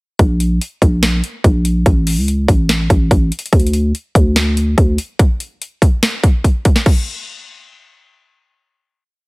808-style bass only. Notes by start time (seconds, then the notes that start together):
0.19 A#1
0.82 A#1
1.44 A#1
1.86 A1
2.17 C#2
2.48 A1
2.90 A1
3.11 A1
3.53 D2
4.15 D2
4.78 D2